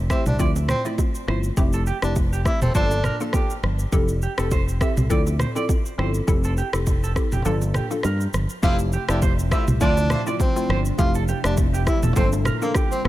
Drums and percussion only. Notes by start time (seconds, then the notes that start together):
0.10 kick, cross-stick, shaker
0.26 mid tom, high bongo, shaker
0.39 kick, low conga, shaker
0.56 low bongo, shaker
0.68 cross-stick, mid tom, high bongo, shaker
0.85 low bongo, shaker
0.98 kick, high bongo, shaker
1.15 shaker
1.28 cross-stick, low conga
1.43 shaker
1.57 kick, low conga, shaker
1.73 shaker
1.86 shaker
2.02 cross-stick, shaker
2.16 kick, high bongo, shaker
2.33 shaker
2.45 kick, cross-stick, shaker
2.62 mid tom, high bongo, shaker
2.75 kick, low conga, shaker
2.91 low bongo, shaker
3.04 cross-stick, mid tom, high bongo, shaker
3.20 low bongo, shaker
3.33 kick, cross-stick, high bongo, shaker
3.50 shaker
3.63 cross-stick, low conga
3.79 shaker
3.92 kick, low conga, shaker
4.08 shaker
4.22 shaker
4.38 cross-stick, shaker
4.51 kick, high bongo, shaker
4.68 shaker
4.81 kick, cross-stick, shaker
4.97 mid tom, high bongo, shaker
5.10 kick, low conga, shaker
5.27 low bongo, shaker
5.39 cross-stick, mid tom, high bongo, shaker
5.56 low bongo, shaker
5.69 kick, high bongo, shaker
5.86 shaker
5.99 cross-stick, low conga
6.14 shaker
6.28 kick, low conga, shaker
6.44 shaker
6.57 shaker
6.73 cross-stick, shaker
6.87 kick, high bongo, shaker
7.04 shaker
7.16 kick, cross-stick, shaker
7.32 mid tom, high bongo, shaker
7.45 low conga, shaker
7.62 low bongo, shaker
7.74 cross-stick, mid tom, high bongo, shaker
7.91 low bongo, shaker
8.03 cross-stick, high bongo, shaker
8.21 shaker
8.33 cross-stick, low conga, shaker
8.49 shaker
8.63 kick, low conga, shaker
8.79 shaker
8.92 low bongo, shaker
9.09 cross-stick, shaker
9.22 kick, high bongo, shaker
9.39 shaker
9.51 kick, cross-stick, shaker
9.68 mid tom, high bongo, shaker
9.81 kick, low conga, shaker
9.97 low bongo, shaker
10.10 cross-stick, mid tom, high bongo, shaker
10.27 low bongo, shaker
10.40 kick, high bongo, shaker
10.57 shaker
10.70 cross-stick, low conga
10.85 shaker
10.99 kick, low conga, shaker
11.14 shaker
11.28 low bongo, shaker
11.44 cross-stick, shaker
11.57 kick, high bongo, shaker
11.74 shaker
11.87 kick, cross-stick, shaker
12.03 mid tom, high bongo, shaker
12.16 kick, low conga, shaker
12.32 low bongo, shaker
12.45 cross-stick, mid tom, high bongo, shaker
12.62 low bongo, shaker
12.74 kick, cross-stick, high bongo, shaker
12.92 shaker
13.05 cross-stick, low conga